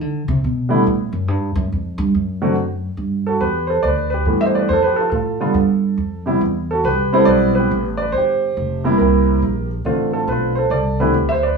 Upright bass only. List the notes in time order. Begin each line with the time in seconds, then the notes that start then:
0.01 D3
0.28 C3
0.44 B2
0.87 A2
1.13 F#2
1.28 G2
1.55 F#2
1.72 F2
1.98 G2
2.15 F#2
2.97 G2
3.40 E2
3.83 D2
4.25 G2
4.69 F2
5.12 A2
5.54 G2
5.97 F2
6.41 E2
6.84 C2
7.27 B1
7.71 A1
8.13 G1
8.57 F1
8.99 C2
9.42 A#1
9.85 A1
10.28 B1
10.70 C2
11.14 D2